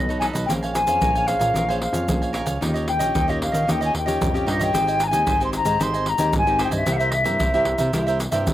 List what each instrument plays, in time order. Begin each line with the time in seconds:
Already playing: analog synth bass B1, nylon-string guitar F#3, flute D#5
0.09 nylon-string guitar D#4 A4 C#5, cavaquinho A4 B4 D#5, pandeiro, shaker
0.19 cavaquinho D#4 A4 B4 D#5, flute G#5, pandeiro
0.33 analog synth bass B1, cavaquinho A4 B4 D#5, pandeiro, shaker
0.46 analog synth bass A#1, nylon-string guitar A#3 C#4, cavaquinho A#4 C#5 F5, flute G5, pandeiro, shaker, surdo
0.50 nylon-string guitar G#4 C5, cavaquinho G#5
0.63 cavaquinho C#5 F5 G#5, pandeiro, shaker
0.73 nylon-string guitar C#4 G#4 C5, flute G#5, muted cavaquinho stroke, pandeiro, shaker
0.86 analog synth bass F2, nylon-string guitar C#4 G#4 C5, cavaquinho C#5 F5 G#5, pandeiro, shaker
1.01 analog synth bass A#1, nylon-string guitar F3, cavaquinho A#4 C#5 F5 G#5, pandeiro, shaker, surdo
1.15 cavaquinho C#5 F5 G#5, pandeiro, shaker
1.27 nylon-string guitar C#4 G#4 C5, flute F5, pandeiro, shaker
1.39 analog synth bass A#2, cavaquinho C#5 F5 G#5, pandeiro, shaker
1.54 analog synth bass A#1, nylon-string guitar A#3, cavaquinho A#4 C#5 F5 G#5, pandeiro, shaker, surdo
1.69 nylon-string guitar C#4 G#4 C5, cavaquinho C#5 F5 G#5, pandeiro, shaker
1.82 flute F5, muted cavaquinho stroke, pandeiro
1.93 analog synth bass F2, cavaquinho C#5 F5 G#5, pandeiro, shaker
2.07 analog synth bass A#1, nylon-string guitar F3 C#4 G#4 C5, pandeiro, shaker, surdo
2.22 cavaquinho C#5 F5 G#5, pandeiro, shaker
2.33 cavaquinho A#4 C#5 F5 G#5, pandeiro
2.46 analog synth bass C#2, cavaquinho C#5 F5 G#5, pandeiro, shaker
2.61 analog synth bass D#2, nylon-string guitar D#3 C#4 F4 G4, cavaquinho D#4 G4 C#5 D#5, pandeiro, shaker, surdo
2.74 cavaquinho G4 C#5 D#5, pandeiro, shaker
2.87 flute G5, muted cavaquinho stroke, pandeiro
2.99 analog synth bass A#1, nylon-string guitar C#4 F4 G4, cavaquinho G4 C#5 D#5, pandeiro, shaker
3.14 analog synth bass D#2, nylon-string guitar A#2, cavaquinho D#4 G4 C#5 D#5, pandeiro, shaker, surdo
3.28 nylon-string guitar C#4 F4 G4, cavaquinho G4 C#5 D#5, flute D#5, pandeiro, shaker
3.42 flute F5, pandeiro
3.52 analog synth bass D#3, cavaquinho G4 C#5 D#5, pandeiro, shaker
3.67 analog synth bass D#2, nylon-string guitar D#3 C#4 F4 G4, cavaquinho D#4 G4 C#5 D#5, flute G5, pandeiro, shaker, surdo
3.81 cavaquinho G4 C#5 D#5, flute G#5, pandeiro, shaker
3.94 analog synth bass D#2, flute G5, muted cavaquinho stroke, pandeiro
4.06 nylon-string guitar C#4 F4 G4, cavaquinho G4 C#5 D#5, pandeiro, shaker
4.20 analog synth bass F2, nylon-string guitar A#2, pandeiro, shaker, surdo
4.34 nylon-string guitar C#4 F4 G4, cavaquinho G4 C#5 D#5, pandeiro, shaker
4.46 analog synth bass G2, cavaquinho D#4 G4 C#5 D#5, flute D#5, pandeiro
4.59 cavaquinho G4 C#5 D#5, pandeiro, shaker
4.64 flute G5
4.73 analog synth bass G#1, nylon-string guitar G#3 C4 D#4 G4, cavaquinho G4 C5 D#5 G#5, pandeiro, shaker, surdo
4.87 cavaquinho C5 D#5 G#5, pandeiro, shaker
5.00 flute A#5, muted cavaquinho stroke, pandeiro, shaker
5.07 flute G#5
5.11 analog synth bass D#2, nylon-string guitar C4 D#4 G4, cavaquinho C5 D#5 G#5, pandeiro, shaker
5.26 analog synth bass G#1, nylon-string guitar D#3, cavaquinho G4 C5 D#5 G#5, pandeiro, shaker, surdo
5.40 nylon-string guitar C4 D#4 G4, cavaquinho C5 D#5 G#5, pandeiro, shaker
5.45 flute C6
5.53 flute A#5, pandeiro, shaker
5.65 analog synth bass G#2, cavaquinho C5 D#5 G#5, pandeiro, shaker
5.79 analog synth bass G#1, nylon-string guitar G#3 C4 D#4 G4, cavaquinho G4 C5 D#5 G#5, flute C6, pandeiro, shaker, surdo
5.94 cavaquinho C5 D#5 G#5, pandeiro, shaker
6.06 flute A#5, muted cavaquinho stroke, pandeiro
6.18 analog synth bass D#2, nylon-string guitar C4 D#4 G4, cavaquinho C5 D#5 G#5, pandeiro, shaker
6.33 analog synth bass G#1, nylon-string guitar D#3, pandeiro, shaker, surdo
6.38 flute G#5
6.47 nylon-string guitar C4 D#4 G4, cavaquinho C5 D#5 G#5, pandeiro, shaker
6.59 cavaquinho G4 C5 D#5 G#5, pandeiro
6.64 flute G5
6.71 analog synth bass G2, cavaquinho C5 D#5 G#5, pandeiro, shaker
6.76 flute E5
6.85 analog synth bass C2, nylon-string guitar C3 A#3 E4 G4, cavaquinho E4 A#4 C5 E5, pandeiro, shaker, surdo
6.93 flute F#5
6.97 cavaquinho C5 E5, flute E5, pandeiro, shaker
7.02 cavaquinho A#4
7.10 flute D#5, muted cavaquinho stroke, pandeiro
7.14 flute E5
7.24 analog synth bass G2, nylon-string guitar A#3 E4 G4, cavaquinho A#4 C5 E5, pandeiro, shaker
7.39 analog synth bass C2, nylon-string guitar G2, cavaquinho E4 A#4 C5 E5, pandeiro, shaker, surdo
7.54 nylon-string guitar A#3 E4 G4, cavaquinho A#4 C5 E5, pandeiro, shaker
7.65 pandeiro
7.78 analog synth bass C3, cavaquinho A#4 C5 E5, pandeiro, shaker
7.93 analog synth bass C2, nylon-string guitar C3 A#3 E4 G4, cavaquinho E4 A#4 C5 E5, pandeiro, shaker, surdo
8.07 cavaquinho A#4 C5 E5, pandeiro, shaker
8.20 muted cavaquinho stroke, pandeiro, shaker
8.31 analog synth bass G2, nylon-string guitar A#3 E4 G4, cavaquinho A#4 C5 E5, pandeiro, shaker
8.47 analog synth bass C2, nylon-string guitar G2, pandeiro, shaker, surdo